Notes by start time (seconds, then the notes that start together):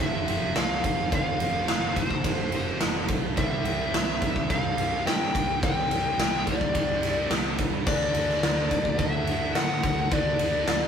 Already playing: F2 C3 F3 A3 C4 F4
0.00 F1 F2 C3 F3 E5
0.26 F1 F3 A3 C4 F4, ride
0.55 C2 F3 A3 C4 F4 F5, snare, ride
0.84 F1, kick, ride
1.10 F1 F2 C3 F3 A3 C4, kick, ride
1.15 F4 F5
1.39 F1, ride
1.68 F1, snare, ride
1.96 F1 C5, kick, ride
2.11 kick
2.23 F1 F2 C3 F3, kick, ride
2.51 F1 F3 A3 C4 F4, ride
2.80 F1 F3 A3 C4 F4, snare, ride
3.08 B1, kick, ride
3.36 C2 C3 E3 G3 C4 G4 E5, kick, ride
3.64 C2, ride
3.92 C2, snare, ride
4.22 C2, kick, ride
4.36 kick
4.49 C2 C3 G3 C4 F5, kick, ride
4.77 C2 E3 G3 C4 G4, ride
4.81 C3
5.05 G2 C3 E3 G3 C4 G4 G5, snare, ride
5.35 C2, kick, ride
5.61 C2 C3 E3 G3 C4 G5, kick, ride
5.66 G4
5.90 C2, ride
6.18 C2, snare, ride
6.47 C2 D5, kick, ride
6.61 kick
6.74 C2 C3 G3 C4, kick, ride
7.02 C2 C3 E3 G3 C4 G4, snare, ride
7.30 C2 C3 E3 G3 C4 G4, snare, ride
7.58 C2, kick, ride
7.86 D2 D3 A3 D4 F#4 D5, kick, crash
8.14 D2, ride
8.29 snare
8.42 D2, snare, ride
8.71 D2, kick, ride
8.85 kick
8.98 D2 D3 A3 D4 E5, kick, ride
9.26 D2 D3 A3 D4 F#4, ride
9.55 A2 D3 A3 D4 F#4 F#5, snare, ride
9.83 D2, kick, ride
10.11 D2 D3 A3 D4 F#4 D5, kick, ride
10.39 D2, ride
10.67 D2, snare, ride